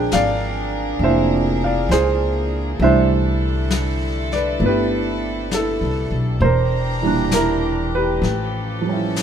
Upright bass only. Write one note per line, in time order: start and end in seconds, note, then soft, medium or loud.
0.12 0.98 G#1 medium
0.99 1.86 F1 medium
1.89 2.76 C#2 medium
2.79 4.56 C2 medium
4.60 5.76 G1 medium
5.81 6.09 C2 medium
6.11 6.39 B1 medium
6.41 8.18 E1 medium
8.22 9.23 A1 medium